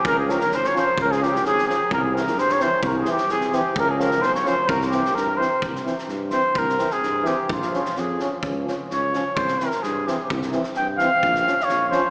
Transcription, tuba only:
\new Staff \with { instrumentName = "Tuba" } { \clef bass \time 2/4 \tempo 4 = 129 des,4 aes,,4 | des,4 aes,,4 | c,4 g,4 | c,4 c,4 |
des,4 b,,4 | c,4 g,4 | c,4 g,4 | c,4 g,4 |
bes,,4 f,4 | des,4 des,4 | c,4 g,4 | c,4 g,4 |
bes,,4 bes,,4 | }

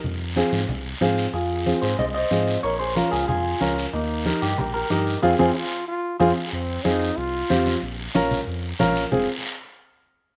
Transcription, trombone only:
\new Staff \with { instrumentName = "Trombone" } { \time 4/4 \key f \minor \tempo 4 = 185 r1 | r1 | r1 | r1 |
r8 c'8 f'4 f'4 f'4 | c'4 ees'4 f'2 | r1 | aes'8 r2. r8 | }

